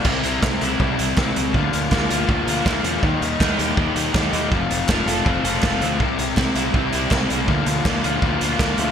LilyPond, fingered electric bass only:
\new Staff \with { instrumentName = "Fingered electric bass" } { \clef bass \time 4/4 \key bes \lydian \tempo 4 = 162 c,8 c,8 c,8 c,8 c,8 c,8 c,8 des,8 | d,8 d,8 d,8 d,8 d,8 d,8 d,8 e,8 | ees,8 ees,8 ees,8 ees,8 ees,8 ees,8 ees,8 ees,8 | f,,8 f,,8 f,,8 f,,8 f,,8 f,,8 f,,8 d,8 |
c,8 c,8 c,8 c,8 c,8 c,8 c,8 c,8 | d,8 d,8 d,8 d,8 d,8 d,8 d,8 d,8 | }